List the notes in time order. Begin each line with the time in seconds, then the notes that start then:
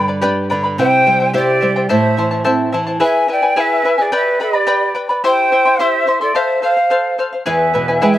Already playing: G2 D3
0.08 B4 D5 B5
0.21 D4 G4 B4 D5 G5 B5
0.50 D3 B4 D5 G5 B5
0.64 B4 D5 B5
0.78 C3 E4 G4 C5 E5 G5
1.06 G3 E4 C5 E5 G5
1.20 E4 C5 G5
1.33 E4 G4 C5 D5 E5 G5
1.61 G3 E4 C5 E5 G5
1.76 E4 C5 G5
1.89 A2 E4 A4 C5 E5 A5
2.17 E3 E4 C5 E5 A5
2.31 E4 C5 A5
2.44 C4 E4 A4 C5 E5 A5
2.72 E3 E4 C5 E5 A5
2.87 E4 C5 A5
3.00 E4 G#4 B4 E5 G#5
3.28 E4 B4 E5 G5 G#5
3.32 D5
3.42 E4 B4 G#5
3.56 E4 G#4 B4 E5 G#5
3.84 E4 B4 E5 G#5
3.98 E4 G#4 B4 D5 G#5
4.12 G4 B4 D5 E5 G5 B5
4.40 G4 B4 D5 G5 B5
4.53 B4 D5 B5
4.67 G4 B4 D5 G5 B5
4.95 B4 D5 G5 B5
5.09 B4 D5 B5
5.24 E4 G4 C5 E5 G5 C6
5.52 E4 C5 E5 C6
5.65 E4 E5 C6
5.79 E4 G4 C5 E5 C6
6.07 E4 C5 E5 C6
6.21 E4 A4 D5 E5 C6
6.35 A4 C5 E5 F5
6.62 A4 C5 F5
6.77 C5 F5
6.90 A4 C5 F5
7.18 A4 C5 F5
7.33 C5 F5
7.46 E2 E4 G#4 B4 E5 G#5
7.74 B2 E4 B4 E5 G#5
7.88 E4 B4 G#5
8.00 G#3 E4 G#4 B4 E5 G5 G#5
8.12 E5 G#5